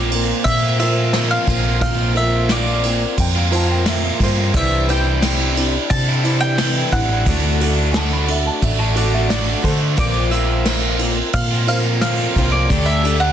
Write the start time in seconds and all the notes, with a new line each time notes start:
Already playing: A#1 A#2 F3 A#3 C4 F4 A#4 C5 D5
0.11 A#3 C4 F4, muted overdriven electric guitar stroke, ride, shaker
0.44 A#2 E5, kick, ride, shaker
0.62 A#3 C4 F4
0.79 F3 A#3 C4 F4 A#4 C5 E5, ride, shaker
0.96 A#3 C4 F4
1.13 A#2 F3 A#3 C4 F4, snare, ride, shaker
1.30 A#3 C4 F4 F5
1.47 A#1 F3 A#3 C4 F4, kick, ride, shaker
1.64 A#3 C4 F4
1.81 A#1 A#2 F3 A#3 C4 F4 A#4 C5 F5, kick, ride, shaker
2.15 F3 A#3 C4 F4 A#4 C5 E5, ride, shaker
2.49 A#2 F3 A#3 C4 F4 D5, snare, ride, shaker
2.66 A#3 C4 F4
2.83 C4 F4, muted overdriven electric guitar stroke, ride, shaker
2.88 A#3
3.18 F2 G5, kick, ride, shaker
3.35 A#3 C4 F4
3.51 F3 A#3 C4 F4 A#4 C5 A5, ride, shaker
3.69 A#3 C4 F4 G5
3.86 A#2 F3 A#3 C4 F4 E5, snare, ride, shaker
4.03 A#3 C4 F4
4.20 G2 F3 A#3 C4 F4 C5, kick, ride, shaker
4.38 A#3 C4 F4
4.54 C2 C3 E3 G3 C4 D4 E4 G4 C5 D5 E5, kick, crash, shaker
4.88 E3 G3 C4 D4 E4 C5 D5 G5, ride, shaker
5.22 C3 E3 G3 C4 E4, snare, ride, shaker
5.40 G3 C4 E4
5.56 G3 D4 E4, muted overdriven electric guitar stroke, ride, shaker
5.90 C3 A5, kick, ride, shaker
6.09 G3 C4 E4
6.24 E3 G3 C4 D4 E4 C5 D5, ride, shaker
6.41 C4 E4 G5
6.45 G3
6.58 C3 E3 G3 C4 D4 E4, snare, ride, shaker
6.76 G3 C4 E4
6.92 A1 E3 G3 C4 D4 E4 F#5, kick, ride, shaker
7.10 G3 C4 E4
7.25 D2 D3 A3 D4 F#4 A4 D5, kick, ride, shaker
7.61 D3 A3 D4 F#4 A4 D5, ride, shaker
7.92 D3 G#5, snare, ride, shaker
7.96 A3 D4 F#4 A5
8.12 A3 D4 F#4 B5
8.27 A3 D4 F#4, muted overdriven electric guitar stroke, ride, shaker
8.31 E5
8.47 A5
8.62 A1 E5, kick, ride, shaker
8.79 A3 D4 F#4 A5
8.96 D3 A3 D4 F#4 A4 D5, ride, shaker
9.14 A3 D4 F#4 E5
9.29 D3 A3 D4 F#4 D5, snare, ride, shaker
9.47 A3 D4 F#4
9.62 D3 A3 D4 F#4 A4 C5, kick, ride
9.66 F#4, shaker
9.81 A3 D4 F#4
9.97 A#1 A#2 F3 A#3 C4 F4 A#4 C5 D5, kick, ride, shaker
10.30 F3 A#3 C4 F4 A#4 C5 E5, ride, shaker
10.34 F4
10.65 A#2 F3 A#3 C4 F4, snare, ride, shaker
10.83 A#3 C4 F4
10.99 A#3 C4 F4, muted overdriven electric guitar stroke, ride, shaker
11.33 A#2 F5, kick, ride, shaker
11.51 A#3 C4 F4
11.67 F3 A#3 C4 F4 A#4 C5 F5, ride, shaker
11.85 A#3 C4 F4
12.01 A#2 F3 A#3 C4 F4 F5, snare, ride, shaker
12.20 A#3 C4 F4
12.36 C2 F3 A#3 C4 F4, kick, ride, shaker
12.52 C4 F4 D5
12.56 A#3
12.70 D2 D3 A3 D4 G4 A4 D5, kick, ride, shaker
12.86 E5
13.04 D3 A3 D4 G4 A4 D5, ride, shaker
13.20 F#5